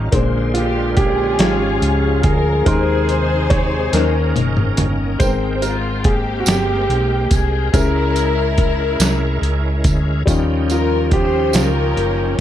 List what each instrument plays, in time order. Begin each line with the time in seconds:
Already playing: tonewheel organ F4, upright piano C#5 D#5 A#5
0.11 fingered electric bass A#1, upright piano A#2 D3 G#3 A#3 C5, tonewheel organ D3 G#3 A#3 C5, kick, closed hi-hat
0.54 grand piano F4, string section G4, closed hi-hat
0.97 string section C#4 F4 G#4, grand piano G4, kick, closed hi-hat
1.38 fingered electric bass G#1, upright piano G#2 G#3 C#4 F4 C#5, tonewheel organ F3 G#3 C#4 F4, snare, closed hi-hat
1.81 fingered electric bass C#2, closed hi-hat
2.23 fingered electric bass D2, grand piano G#4, string section A#4, kick, closed hi-hat
2.65 fingered electric bass D#2, tonewheel organ C3 D#3 G#3 G4, upright piano C3 D#3 G#3 D#4 C6, string section D#4 G#4 C5, grand piano A#4, kick, closed hi-hat
2.72 tonewheel organ G#4
3.09 closed hi-hat
3.50 grand piano C#5, kick, closed hi-hat
3.93 fingered electric bass D#2, upright piano D#3 A#3 C#4 D#4 A#4, tonewheel organ A#3 C#4 D#4 A#4, snare, closed hi-hat
4.36 fingered electric bass F#1, closed hi-hat, high tom
4.57 mid tom
4.77 fingered electric bass G1, closed hi-hat, mid tom
5.19 fingered electric bass G#1, upright piano G#2 G#3 B3 G5, tonewheel organ G#3 A#3 A#4 G5, grand piano C5, kick, closed hi-hat, tambourine
5.23 upright piano C4 A#4, tonewheel organ C4
5.55 grand piano C5
5.62 string section F4, grand piano A#4, closed hi-hat, tambourine
6.04 string section A#3 C4 G4, grand piano G#4, kick, closed hi-hat
6.40 grand piano F#4
6.46 fingered electric bass G1, grand piano G4, snare, closed hi-hat, tambourine
6.89 fingered electric bass B1, closed hi-hat
7.31 fingered electric bass C2, string section G#4, kick, closed hi-hat, tambourine
7.72 fingered electric bass C#2, upright piano C#3 G#3 C#4 E4, tonewheel organ G#3 C#4 E4 A#4, string section E4 A#4, grand piano A#4, kick, closed hi-hat, tambourine
7.76 upright piano A#4
8.16 closed hi-hat, tambourine
8.58 kick, closed hi-hat
9.00 fingered electric bass C2, snare, closed hi-hat, tambourine
9.42 fingered electric bass C#2, closed hi-hat
9.84 fingered electric bass D2, kick, closed hi-hat, tambourine
10.26 fingered electric bass D#2, upright piano D#3 G3 D#4 F4, tonewheel organ F3 C#4 D#4 G4, kick, closed hi-hat, tambourine
10.30 upright piano C#4
10.70 grand piano F4, string section A#4, closed hi-hat, tambourine
11.11 grand piano G4, string section C5, kick, closed hi-hat
11.53 fingered electric bass C#2, string section C#4 G4 A#4, grand piano F4, snare, closed hi-hat, tambourine
11.96 fingered electric bass F#1, closed hi-hat